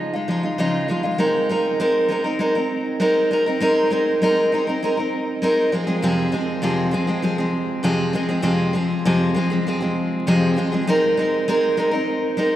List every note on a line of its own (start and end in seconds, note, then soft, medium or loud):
0.00 0.14 F3 medium
0.00 0.15 G#3 medium
0.00 0.14 D#4 medium
0.00 0.12 F4 medium
0.14 0.27 G#3 soft
0.14 0.29 D#4 soft
0.14 0.29 F4 soft
0.28 0.44 F3 medium
0.28 0.44 G#3 medium
0.28 0.43 D#4 medium
0.28 0.42 F4 medium
0.43 0.58 G#3 soft
0.43 0.58 D#4 soft
0.43 0.59 F4 soft
0.58 0.89 C#3 medium
0.58 0.87 F3 medium
0.58 0.88 G#3 medium
0.58 0.88 D#4 medium
0.58 0.90 F4 medium
0.88 1.05 F3 medium
0.88 1.04 G#3 medium
0.88 1.03 D#4 medium
0.88 1.02 F4 medium
1.03 1.17 G#3 soft
1.03 1.18 D#4 soft
1.03 1.19 F4 medium
1.18 1.48 G#3 medium
1.18 1.49 C4 medium
1.18 1.50 D#4 medium
1.18 1.50 A#4 medium
1.49 1.79 G#3 medium
1.49 1.79 C4 medium
1.49 1.80 D#4 medium
1.49 1.80 A#4 medium
1.80 2.07 G#3 medium
1.80 2.09 C4 medium
1.80 2.10 D#4 medium
1.80 2.11 A#4 medium
2.09 2.25 G#3 medium
2.09 2.26 C4 medium
2.09 2.24 D#4 medium
2.09 2.23 A#4 medium
2.24 2.39 C4 soft
2.24 2.39 D#4 soft
2.24 2.40 A#4 medium
2.39 2.55 G#3 medium
2.39 2.56 C4 medium
2.39 2.55 D#4 medium
2.39 2.54 A#4 medium
2.55 2.99 C4 soft
2.55 3.00 D#4 soft
2.55 3.01 A#4 medium
3.00 3.30 G#3 medium
3.00 3.31 C4 medium
3.00 3.32 D#4 medium
3.00 3.32 A#4 medium
3.31 3.47 G#3 medium
3.31 3.47 C4 medium
3.31 3.46 D#4 medium
3.31 3.45 A#4 medium
3.46 3.60 C4 soft
3.46 3.61 D#4 soft
3.46 3.61 A#4 medium
3.60 3.89 G#3 medium
3.60 3.90 C4 medium
3.60 3.91 D#4 medium
3.60 3.91 A#4 medium
3.90 4.20 G#3 medium
3.90 4.22 C4 medium
3.90 4.22 D#4 medium
3.90 4.23 A#4 medium
4.22 4.51 G#3 medium
4.22 4.52 C4 medium
4.22 4.53 D#4 medium
4.22 4.54 A#4 medium
4.52 4.68 G#3 medium
4.52 4.68 C4 medium
4.52 4.67 D#4 medium
4.52 4.66 A#4 medium
4.67 4.83 C4 soft
4.67 4.83 D#4 medium
4.67 4.83 A#4 medium
4.83 4.98 G#3 medium
4.83 4.99 C4 medium
4.83 4.98 D#4 medium
4.83 4.96 A#4 medium
4.97 5.42 C4 soft
4.97 5.43 D#4 soft
4.97 5.43 A#4 medium
5.42 5.72 G#3 medium
5.42 5.73 C4 medium
5.42 5.74 D#4 medium
5.42 5.74 A#4 medium
5.72 5.88 F3 medium
5.72 5.87 G#3 medium
5.72 5.87 C4 medium
5.72 5.86 G#4 medium
5.87 6.02 F3 soft
5.87 6.02 G#3 medium
5.87 6.03 C4 medium
5.87 6.03 G#4 medium
6.02 6.33 F2 medium
6.02 6.34 C3 medium
6.02 6.30 F3 medium
6.02 6.31 G#3 medium
6.02 6.33 C4 medium
6.02 6.33 G#4 medium
6.32 6.62 F3 medium
6.32 6.62 G#3 medium
6.32 6.62 C4 medium
6.32 6.63 G#4 medium
6.62 6.93 F2 medium
6.62 6.94 C3 medium
6.62 6.90 F3 medium
6.62 6.92 G#3 medium
6.62 6.93 C4 medium
6.62 6.93 G#4 medium
6.91 7.08 F3 medium
6.91 7.08 G#3 medium
6.91 7.07 C4 medium
6.91 7.06 G#4 medium
7.07 7.21 F3 soft
7.07 7.22 G#3 soft
7.07 7.23 C4 medium
7.07 7.23 G#4 medium
7.22 7.39 F3 medium
7.22 7.39 G#3 medium
7.22 7.37 C4 medium
7.22 7.37 G#4 medium
7.38 7.83 F3 soft
7.38 7.83 G#3 soft
7.38 7.83 C4 soft
7.38 7.84 G#4 medium
7.83 8.14 F2 medium
7.83 8.15 C3 medium
7.83 8.12 F3 medium
7.83 8.13 G#3 loud
7.83 8.14 C4 medium
7.83 8.15 G#4 medium
8.13 8.29 F3 medium
8.13 8.30 G#3 medium
8.13 8.28 C4 medium
8.13 8.27 G#4 medium
8.29 8.42 F3 soft
8.29 8.42 G#3 soft
8.29 8.42 C4 medium
8.29 8.43 G#4 medium
8.42 8.74 F2 medium
8.42 8.74 C3 medium
8.42 8.72 F3 medium
8.42 8.73 G#3 medium
8.42 8.74 C4 medium
8.42 8.75 G#4 medium
8.73 9.05 F3 medium
8.73 9.05 G#3 medium
8.73 9.06 C4 medium
8.73 9.06 G#4 medium
9.05 9.36 F2 medium
9.05 9.36 C3 medium
9.05 9.33 F3 medium
9.05 9.35 G#3 medium
9.05 9.35 C4 medium
9.05 9.36 G#4 medium
9.34 9.50 F3 medium
9.34 9.50 G#3 medium
9.34 9.50 C4 medium
9.34 9.49 G#4 medium
9.50 9.65 F3 soft
9.50 9.67 G#3 medium
9.50 9.66 C4 medium
9.50 9.66 G#4 medium
9.67 9.82 F3 medium
9.67 9.81 G#3 medium
9.67 9.81 C4 medium
9.67 9.79 G#4 medium
9.80 10.26 F3 soft
9.80 10.27 G#3 soft
9.80 10.27 C4 medium
9.80 10.26 G#4 medium
10.27 10.57 F2 medium
10.27 10.57 C3 medium
10.27 10.55 F3 medium
10.27 10.56 G#3 medium
10.27 10.57 C4 loud
10.27 10.58 G#4 medium
10.56 10.72 F3 medium
10.56 10.72 G#3 medium
10.56 10.72 C4 medium
10.56 10.71 G#4 medium
10.72 10.87 F3 soft
10.72 10.86 G#3 medium
10.72 10.87 C4 medium
10.72 10.87 G#4 medium
10.87 11.16 G#3 medium
10.87 11.18 C4 loud
10.87 11.18 D#4 medium
10.87 11.18 A#4 medium
11.17 11.47 G#3 medium
11.17 11.47 C4 medium
11.17 11.48 D#4 medium
11.17 11.49 A#4 medium
11.48 11.76 G#3 medium
11.48 11.77 C4 medium
11.48 11.78 D#4 medium
11.48 11.78 A#4 medium
11.77 11.92 G#3 medium
11.77 11.93 C4 medium
11.77 11.92 D#4 medium
11.77 11.90 A#4 medium
11.91 12.37 C4 soft
11.91 12.37 D#4 medium
11.91 12.37 A#4 medium
12.37 12.56 G#3 medium
12.37 12.56 C4 medium
12.37 12.56 D#4 medium
12.37 12.56 A#4 medium